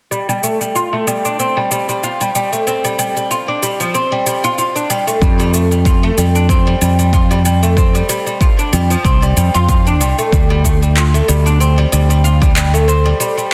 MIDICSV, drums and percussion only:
0, 0, Header, 1, 2, 480
1, 0, Start_track
1, 0, Tempo, 638298
1, 88, Time_signature, 4, 2, 24, 8
1, 10180, End_track
2, 0, Start_track
2, 0, Title_t, "Drums"
2, 90, Note_on_c, 9, 69, 33
2, 166, Note_off_c, 9, 69, 0
2, 221, Note_on_c, 9, 69, 26
2, 296, Note_off_c, 9, 69, 0
2, 328, Note_on_c, 9, 69, 65
2, 403, Note_off_c, 9, 69, 0
2, 460, Note_on_c, 9, 69, 29
2, 536, Note_off_c, 9, 69, 0
2, 570, Note_on_c, 9, 69, 38
2, 645, Note_off_c, 9, 69, 0
2, 809, Note_on_c, 9, 69, 61
2, 885, Note_off_c, 9, 69, 0
2, 941, Note_on_c, 9, 69, 31
2, 1016, Note_off_c, 9, 69, 0
2, 1050, Note_on_c, 9, 69, 37
2, 1126, Note_off_c, 9, 69, 0
2, 1290, Note_on_c, 9, 69, 67
2, 1365, Note_off_c, 9, 69, 0
2, 1421, Note_on_c, 9, 69, 28
2, 1496, Note_off_c, 9, 69, 0
2, 1531, Note_on_c, 9, 69, 40
2, 1606, Note_off_c, 9, 69, 0
2, 1661, Note_on_c, 9, 69, 27
2, 1736, Note_off_c, 9, 69, 0
2, 1770, Note_on_c, 9, 69, 63
2, 1845, Note_off_c, 9, 69, 0
2, 1902, Note_on_c, 9, 69, 28
2, 1978, Note_off_c, 9, 69, 0
2, 2010, Note_on_c, 9, 69, 36
2, 2085, Note_off_c, 9, 69, 0
2, 2141, Note_on_c, 9, 69, 29
2, 2216, Note_off_c, 9, 69, 0
2, 2250, Note_on_c, 9, 69, 69
2, 2325, Note_off_c, 9, 69, 0
2, 2382, Note_on_c, 9, 69, 29
2, 2458, Note_off_c, 9, 69, 0
2, 2490, Note_on_c, 9, 69, 38
2, 2565, Note_off_c, 9, 69, 0
2, 2730, Note_on_c, 9, 69, 71
2, 2805, Note_off_c, 9, 69, 0
2, 2860, Note_on_c, 9, 69, 33
2, 2935, Note_off_c, 9, 69, 0
2, 2968, Note_on_c, 9, 69, 40
2, 3043, Note_off_c, 9, 69, 0
2, 3209, Note_on_c, 9, 69, 69
2, 3284, Note_off_c, 9, 69, 0
2, 3340, Note_on_c, 9, 69, 29
2, 3415, Note_off_c, 9, 69, 0
2, 3448, Note_on_c, 9, 69, 41
2, 3523, Note_off_c, 9, 69, 0
2, 3582, Note_on_c, 9, 69, 30
2, 3657, Note_off_c, 9, 69, 0
2, 3687, Note_on_c, 9, 69, 68
2, 3762, Note_off_c, 9, 69, 0
2, 3819, Note_on_c, 9, 69, 32
2, 3894, Note_off_c, 9, 69, 0
2, 3922, Note_on_c, 9, 36, 99
2, 3926, Note_on_c, 9, 69, 37
2, 3998, Note_off_c, 9, 36, 0
2, 4002, Note_off_c, 9, 69, 0
2, 4059, Note_on_c, 9, 69, 30
2, 4134, Note_off_c, 9, 69, 0
2, 4166, Note_on_c, 9, 69, 70
2, 4241, Note_off_c, 9, 69, 0
2, 4300, Note_on_c, 9, 69, 32
2, 4375, Note_off_c, 9, 69, 0
2, 4402, Note_on_c, 9, 36, 106
2, 4407, Note_on_c, 9, 69, 42
2, 4477, Note_off_c, 9, 36, 0
2, 4483, Note_off_c, 9, 69, 0
2, 4648, Note_on_c, 9, 69, 73
2, 4723, Note_off_c, 9, 69, 0
2, 4779, Note_on_c, 9, 69, 33
2, 4855, Note_off_c, 9, 69, 0
2, 4881, Note_on_c, 9, 36, 97
2, 4888, Note_on_c, 9, 69, 43
2, 4957, Note_off_c, 9, 36, 0
2, 4963, Note_off_c, 9, 69, 0
2, 5127, Note_on_c, 9, 69, 76
2, 5202, Note_off_c, 9, 69, 0
2, 5258, Note_on_c, 9, 69, 31
2, 5333, Note_off_c, 9, 69, 0
2, 5362, Note_on_c, 9, 36, 92
2, 5366, Note_on_c, 9, 69, 45
2, 5437, Note_off_c, 9, 36, 0
2, 5441, Note_off_c, 9, 69, 0
2, 5498, Note_on_c, 9, 69, 30
2, 5573, Note_off_c, 9, 69, 0
2, 5605, Note_on_c, 9, 69, 71
2, 5681, Note_off_c, 9, 69, 0
2, 5739, Note_on_c, 9, 69, 34
2, 5814, Note_off_c, 9, 69, 0
2, 5842, Note_on_c, 9, 36, 96
2, 5849, Note_on_c, 9, 69, 37
2, 5917, Note_off_c, 9, 36, 0
2, 5924, Note_off_c, 9, 69, 0
2, 5979, Note_on_c, 9, 69, 30
2, 6054, Note_off_c, 9, 69, 0
2, 6086, Note_on_c, 9, 69, 70
2, 6162, Note_off_c, 9, 69, 0
2, 6219, Note_on_c, 9, 69, 31
2, 6294, Note_off_c, 9, 69, 0
2, 6322, Note_on_c, 9, 36, 104
2, 6327, Note_on_c, 9, 69, 41
2, 6397, Note_off_c, 9, 36, 0
2, 6402, Note_off_c, 9, 69, 0
2, 6459, Note_on_c, 9, 69, 28
2, 6535, Note_off_c, 9, 69, 0
2, 6566, Note_on_c, 9, 69, 70
2, 6641, Note_off_c, 9, 69, 0
2, 6699, Note_on_c, 9, 69, 35
2, 6774, Note_off_c, 9, 69, 0
2, 6802, Note_on_c, 9, 36, 99
2, 6807, Note_on_c, 9, 69, 39
2, 6878, Note_off_c, 9, 36, 0
2, 6883, Note_off_c, 9, 69, 0
2, 6940, Note_on_c, 9, 69, 27
2, 7015, Note_off_c, 9, 69, 0
2, 7047, Note_on_c, 9, 69, 75
2, 7123, Note_off_c, 9, 69, 0
2, 7179, Note_on_c, 9, 69, 29
2, 7255, Note_off_c, 9, 69, 0
2, 7284, Note_on_c, 9, 36, 101
2, 7287, Note_on_c, 9, 69, 43
2, 7359, Note_off_c, 9, 36, 0
2, 7362, Note_off_c, 9, 69, 0
2, 7420, Note_on_c, 9, 69, 31
2, 7495, Note_off_c, 9, 69, 0
2, 7527, Note_on_c, 9, 69, 72
2, 7603, Note_off_c, 9, 69, 0
2, 7661, Note_on_c, 9, 69, 31
2, 7736, Note_off_c, 9, 69, 0
2, 7764, Note_on_c, 9, 36, 105
2, 7770, Note_on_c, 9, 69, 40
2, 7840, Note_off_c, 9, 36, 0
2, 7845, Note_off_c, 9, 69, 0
2, 8005, Note_on_c, 9, 36, 51
2, 8010, Note_on_c, 9, 69, 70
2, 8080, Note_off_c, 9, 36, 0
2, 8085, Note_off_c, 9, 69, 0
2, 8143, Note_on_c, 9, 69, 30
2, 8218, Note_off_c, 9, 69, 0
2, 8247, Note_on_c, 9, 39, 74
2, 8251, Note_on_c, 9, 69, 41
2, 8322, Note_off_c, 9, 39, 0
2, 8326, Note_off_c, 9, 69, 0
2, 8385, Note_on_c, 9, 69, 28
2, 8460, Note_off_c, 9, 69, 0
2, 8491, Note_on_c, 9, 69, 72
2, 8566, Note_off_c, 9, 69, 0
2, 8623, Note_on_c, 9, 69, 33
2, 8698, Note_off_c, 9, 69, 0
2, 8732, Note_on_c, 9, 69, 38
2, 8807, Note_off_c, 9, 69, 0
2, 8971, Note_on_c, 9, 69, 71
2, 9046, Note_off_c, 9, 69, 0
2, 9103, Note_on_c, 9, 69, 30
2, 9178, Note_off_c, 9, 69, 0
2, 9212, Note_on_c, 9, 69, 42
2, 9287, Note_off_c, 9, 69, 0
2, 9338, Note_on_c, 9, 36, 93
2, 9344, Note_on_c, 9, 69, 28
2, 9413, Note_off_c, 9, 36, 0
2, 9419, Note_off_c, 9, 69, 0
2, 9448, Note_on_c, 9, 39, 76
2, 9452, Note_on_c, 9, 69, 73
2, 9523, Note_off_c, 9, 39, 0
2, 9527, Note_off_c, 9, 69, 0
2, 9586, Note_on_c, 9, 69, 31
2, 9661, Note_off_c, 9, 69, 0
2, 9693, Note_on_c, 9, 69, 38
2, 9769, Note_off_c, 9, 69, 0
2, 9934, Note_on_c, 9, 69, 76
2, 10009, Note_off_c, 9, 69, 0
2, 10065, Note_on_c, 9, 69, 31
2, 10141, Note_off_c, 9, 69, 0
2, 10180, End_track
0, 0, End_of_file